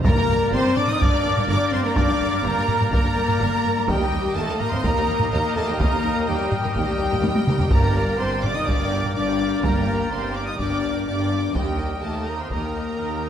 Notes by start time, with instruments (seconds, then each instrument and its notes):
0.04 double bass section G1, cello section G2, french horn section A#3, woodwind section A#3 G4 A#4 D5, violin section A#4 D5 A#5, viola section A#4, flute section A#5, taiko
0.17 cello section G2, violin section A#4
0.27 double bass section G1, cello section G2, violin section A#4
0.41 cello section G2, violin section A#4
0.52 double bass section G1, cello section G2, french horn section C4, violin section A#4 C6, viola section C5, flute section C6
0.65 cello section G2, violin section A#4
0.76 french horn section D4, viola section D5, flute section D6, violin section D6, taiko low-mid
0.88 cello section G2, french horn section D#4, violin section A#4 D#6, viola section D#5, flute section D#6, taiko low-mid
1.00 double bass section G1, cello section G2, french horn section D4, violin section A#4 D6, viola section D5, flute section D6, taiko
1.14 cello section G2, violin section A#4
1.24 double bass section G1, cello section G2, violin section A#4
1.37 cello section G2, violin section A#4, taiko low-mid
1.47 double bass section G1, cello section G2, french horn section D4, violin section A#4 D6, viola section D5, flute section D6
1.71 double bass section G1, cello section G2, french horn section C4, violin section A#4 C6, viola section C5, flute section C6
1.83 cello section G2, french horn section A#3, viola section A#4, violin section A#4 A#5, flute section A#5
1.94 double bass section G1, cello section G2, french horn section D4, violin section A#4 D6, flute section D6, taiko
1.99 viola section D5
2.09 cello section G2, violin section A#4
2.20 double bass section G1, cello section G2, violin section A#4
2.32 cello section G2, violin section A#4
2.43 double bass section G1, cello section G2, french horn section A#3, violin section A#4 A#5, viola section A#4, flute section A#5
2.56 cello section G2, violin section A#4
2.69 taiko low-mid
2.80 cello section G2, violin section A#4, taiko low-mid
2.91 double bass section G1, cello section G2, french horn section A#3, violin section A#4 A#5, viola section A#4, flute section A#5, taiko
3.04 cello section G2, violin section A#4
3.14 double bass section G1, cello section G2, violin section A#4
3.27 cello section G2, violin section A#4, taiko low-mid
3.39 double bass section G1, cello section G2, violin section A#4
3.63 double bass section G1, cello section G2, violin section A#4
3.76 cello section G2, violin section A#4
3.88 double bass section D#2, cello section D#2, french horn section G3, woodwind section A#3 G4 A#4 D#5, viola section G4, violin section A#4 D#5 G5, flute section G5, taiko
4.00 cello section D#2, violin section A#4
4.12 double bass section D#2, cello section D#2, violin section A#4
4.24 cello section D#2, violin section A#4
4.35 double bass section D#2, cello section D#2, french horn section A3, viola section A4, violin section A#4 A5, flute section A5
4.49 cello section D#2, violin section A#4
4.59 french horn section A#3, viola section A#4, flute section A#5, violin section A#5, taiko low-mid
4.70 cello section D#2, french horn section C4, violin section A#4 C6, viola section C5, flute section C6, taiko low-mid
4.83 double bass section D#2, cello section D#2, french horn section A#3, violin section A#4 A#5, viola section A#4, flute section A#5, taiko
4.97 cello section D#2, violin section A#4
5.08 double bass section D#2, cello section D#2, violin section A#4
5.19 cello section D#2, violin section A#4, taiko low-mid
5.32 double bass section D#2, cello section D#2, french horn section A#3, violin section A#4 A#5, viola section A#4, flute section A#5
5.56 double bass section D#2, cello section D#2, french horn section A3, viola section A4, violin section A#4 A5, flute section A5
5.68 cello section D#2, french horn section G3, viola section G4, violin section A#4 G5, flute section G5
5.78 double bass section D#2, cello section D#2, french horn section A#3, violin section A#4 A#5, viola section A#4, flute section A#5, taiko
5.91 cello section D#2, violin section A#4
6.03 double bass section D#2, cello section D#2, violin section A#4
6.14 violin section A#4
6.18 cello section D#2
6.26 double bass section D#2, cello section D#2, french horn section G3, viola section G4, violin section A#4 G5, flute section G5
6.37 violin section A#4
6.42 cello section D#2
6.52 taiko low-mid
6.62 cello section D#2, violin section A#4, taiko low-mid
6.74 double bass section D#2, cello section D#2, french horn section G3, viola section G4, violin section A#4 G5, flute section G5, taiko
6.86 cello section D#2, violin section A#4
6.98 double bass section D#2, cello section D#2, violin section A#4
7.10 cello section D#2, violin section A#4, taiko low-mid
7.22 double bass section D#2, cello section D#2, violin section A#4, taiko high
7.36 taiko high
7.46 double bass section D#2, cello section D#2, violin section A#4, taiko mid
7.59 cello section D#2, violin section A#4, taiko low
7.71 double bass section G1, cello section G2, timpani G2, french horn section A#3, woodwind section A#3 G4 A#4 D5, violin section G4 A#5, viola section A#4, flute section A#5, taiko
7.75 violin section D5
7.85 violin section A#4 G5
7.96 violin section G4 D5
8.09 violin section A#4 G5
8.19 double bass section G1, cello section G2, french horn section C4, violin section G4 D5 C6, viola section C5, flute section C6
8.34 violin section A#4 G5
8.42 french horn section D4, violin section G4 D5 D6, viola section D5, flute section D6, taiko low-mid
8.54 french horn section D#4, violin section A#4 G5 D#6, viola section D#5, flute section D#6, taiko low-mid
8.66 double bass section G1, cello section G2, french horn section D4, violin section G4 D5 D6, viola section D5, flute section D6, taiko
8.81 violin section A#4 G5
8.93 violin section G4 D5
9.04 violin section A#4 G5, taiko low-mid
9.14 double bass section G1, cello section G2, french horn section D4, violin section G4 D5 D6, viola section D5, flute section D6
9.31 violin section A#4 G5
9.41 violin section G4 D5
9.52 violin section A#4 G5
9.63 double bass section G1, cello section G2, french horn section A#3, violin section G4 D5 A#5, viola section A#4, flute section A#5, taiko
9.75 violin section A#4 G5
9.85 violin section G4 D5
9.99 violin section A#4 G5
10.10 double bass section G1, cello section G2, french horn section C4, violin section G4 D5 C6, viola section C5, flute section C6
10.23 violin section A#4 G5
10.35 french horn section D4, violin section G4 D5 D6, viola section D5, flute section D6
10.45 french horn section D#4, viola section D#5, violin section G5 D#6, flute section D#6
10.49 violin section A#4
10.58 double bass section G1, cello section G2, french horn section D4, violin section G4 D5 D6, viola section D5, flute section D6, taiko
10.70 violin section A#4 G5
10.82 violin section G4 D5
10.93 violin section A#4 G5
11.06 double bass section G1, cello section G2, french horn section D4, violin section G4 D5 D6, viola section D5, flute section D6
11.18 violin section A#4 G5
11.30 violin section G4 D5
11.42 violin section A#4 G5
11.54 double bass section D#2, cello section D#2, french horn section G3, woodwind section A#3 G4 A#4 D#5, violin section G4 D#5 G5, viola section G4, flute section G5, taiko
11.65 violin section A#4 G5
11.78 violin section G4 D#5
11.90 violin section A#4 G5
12.02 double bass section D#2, cello section D#2, french horn section A3, violin section G4 D#5 A5, viola section A4, flute section A5
12.14 violin section A#4 G5
12.26 french horn section A#3, violin section G4 D#5 A#5, viola section A#4, flute section A#5
12.37 french horn section C4, violin section A#4 G5 C6, viola section C5, flute section C6
12.50 double bass section D#2, cello section D#2, french horn section A#3, violin section G4 D#5 A#5, viola section A#4, flute section A#5, taiko
12.64 violin section A#4 G5
12.78 violin section G4 D#5
12.89 violin section A#4 G5
12.97 double bass section D#2, cello section D#2, violin section G4 D#5
13.14 violin section A#4 G5
13.25 violin section G4 D#5